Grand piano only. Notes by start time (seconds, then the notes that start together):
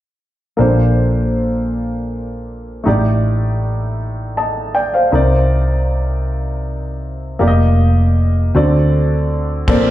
0.57 A#2 A#3 D4 A4 C5
2.84 A2 A3 D#4 G4
2.88 D5
4.37 D#5 A5
4.75 D5 G5
4.94 C5 F5
5.11 C3 C4 D#4 A#4 D5
7.39 A#3 F4 G4 D5
7.48 D#5
8.55 D3 C4 F#4 A4 D5
9.68 A#2 C4 A4 A#4 D5